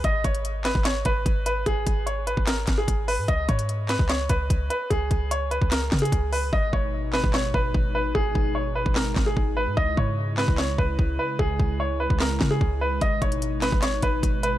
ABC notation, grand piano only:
X:1
M:4/4
L:1/16
Q:1/4=148
K:G#m
V:1 name="Grand piano"
d2 c4 B2 c2 B4 B2 | G4 c2 B2 A3 G3 B2 | d2 c4 B2 c2 B4 B2 | G4 c2 B2 A3 G3 B2 |
d2 c4 B2 c2 B4 B2 | G4 c2 B2 A3 G3 B2 | d2 c4 B2 c2 B4 B2 | G4 c2 B2 A3 G3 B2 |
d2 c4 B2 c2 B4 B2 |]